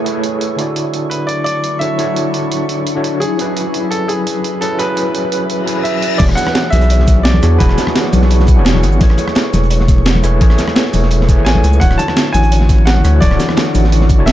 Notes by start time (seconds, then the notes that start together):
Already playing: A3 E4 G#4 B4 C#5
0.04 A3 E4 G#4 B4, closed hi-hat
0.08 C#5
0.24 closed hi-hat
0.41 closed hi-hat
0.56 D3 F#3 D4 E4 F#4 C#6, closed hi-hat
0.61 D5
0.76 closed hi-hat
0.94 closed hi-hat
1.10 B4, closed hi-hat
1.27 D5, closed hi-hat
1.44 D5, closed hi-hat
1.64 closed hi-hat
1.79 D3 D4 E4 F#4 C#5 E5, closed hi-hat
1.98 D3 D4 E4 F#4 C#5, closed hi-hat
2.16 closed hi-hat
2.34 closed hi-hat
2.52 closed hi-hat
2.69 closed hi-hat
2.87 closed hi-hat
2.95 D3 D4 E4 F#4 C#5
3.04 closed hi-hat
3.20 G#4 B4, closed hi-hat
3.37 F#3 C#4 E4 G#4, closed hi-hat
3.41 B4
3.57 closed hi-hat
3.74 closed hi-hat
3.91 A4, closed hi-hat
4.08 G#4, closed hi-hat
4.27 closed hi-hat
4.44 closed hi-hat
4.61 F#3 C#4 E4 G#4 A4 B4, closed hi-hat
4.79 F#3 C#4 E4 G#4 B4, closed hi-hat
4.97 closed hi-hat
5.15 closed hi-hat
5.32 closed hi-hat
5.50 closed hi-hat, reverse cymbal
5.65 F#3 C#4 E4 G#4, closed hi-hat
5.69 B4
5.83 E5, closed hi-hat
6.02 closed hi-hat
6.18 E1 E3 F#3 B3 D4 F#4 G#4 D5 C#6, kick, closed hi-hat, crash, high conga
6.22 C#5
6.29 cross-stick, muted conga
6.35 F#5, closed hi-hat, muted conga, cabasa
6.47 cross-stick, snare, high conga
6.55 snare, closed hi-hat
6.70 B1 E5, snare, closed hi-hat, high conga, cabasa
6.81 closed hi-hat
6.90 closed hi-hat
6.99 snare, high conga
7.08 kick, snare, closed hi-hat, cabasa
7.16 muted conga
7.23 D5, snare, closed hi-hat
7.34 high conga
7.42 E2 E3 B3 D4 F#4 G#4 C#5, cross-stick, closed hi-hat, muted conga, cabasa
7.58 E1 E3 B3 D4 F#4 G#4 B4 C#5, kick, closed hi-hat, high conga
7.69 cross-stick, snare, muted conga
7.78 snare, closed hi-hat, muted conga, cabasa
7.87 cross-stick, snare, high conga
7.96 snare, closed hi-hat
8.05 snare
8.13 B1, closed hi-hat, open hi-hat, high conga, cabasa
8.22 snare
8.31 closed hi-hat
8.40 snare, high conga
8.47 kick, closed hi-hat
8.48 closed hi-hat, cabasa
8.55 E1 E3 B3 D4 F#4 G#4
8.59 C#5
8.65 snare, closed hi-hat
8.75 high conga
8.83 G#1, snare, closed hi-hat, cabasa
8.92 cabasa
8.99 A1 A3 E4 G#4 B4, kick, closed hi-hat, high conga
9.03 C#5
9.09 cross-stick, muted conga
9.18 closed hi-hat, muted conga, cabasa
9.27 cross-stick, snare, high conga
9.35 snare, closed hi-hat
9.53 E1, snare, closed hi-hat, high conga, cabasa
9.63 closed hi-hat
9.70 closed hi-hat
9.80 snare, high conga
9.88 kick, snare, closed hi-hat, cabasa
9.98 muted conga
10.06 snare, closed hi-hat
10.15 high conga
10.23 E1 A3 E4 G#4 B4 C#5, cross-stick, closed hi-hat, muted conga, cabasa
10.40 A1 A3 E4 G#4 B4 C#5, kick, closed hi-hat, high conga
10.50 cross-stick, snare, muted conga
10.58 snare, closed hi-hat, muted conga, cabasa
10.68 cross-stick, snare, high conga
10.76 snare, closed hi-hat
10.85 snare
10.93 E1, closed hi-hat, open hi-hat, high conga, cabasa
11.03 snare
11.11 closed hi-hat
11.21 snare, high conga
11.27 A3 E4 G#4 B4, kick, closed hi-hat, cabasa
11.31 C#5
11.38 A1
11.45 G#5, snare, closed hi-hat
11.55 A1, high conga
11.64 C#2, snare, closed hi-hat, cabasa
11.73 cabasa
11.80 D1 D3 E3 D4 E4 F#4 F#5, kick, closed hi-hat, high conga
11.84 C#5
11.91 cross-stick, muted conga
11.98 A5, closed hi-hat, muted conga, cabasa
12.08 cross-stick, snare, high conga
12.17 snare, closed hi-hat
12.33 A1 G#5, snare, closed hi-hat, high conga, cabasa
12.43 closed hi-hat
12.52 closed hi-hat
12.60 snare, high conga
12.69 kick, snare, closed hi-hat, cabasa
12.78 muted conga
12.85 F#5, snare, closed hi-hat
12.97 high conga
13.04 D2 D3 D4 E4 F#4 C#5, cross-stick, closed hi-hat, muted conga, cabasa
13.21 D1 D3 D4 E4 F#4 C#5 D5, kick, closed hi-hat, high conga
13.31 cross-stick, snare, muted conga
13.40 snare, closed hi-hat, muted conga, cabasa
13.49 cross-stick, snare, high conga
13.57 snare, closed hi-hat
13.66 snare
13.75 A1, closed hi-hat, open hi-hat, high conga, cabasa
13.84 snare
13.92 closed hi-hat
14.01 snare, high conga
14.09 kick, closed hi-hat, cabasa
14.18 D1 D3 D4 E4 F#4 C#5
14.26 E5, snare, closed hi-hat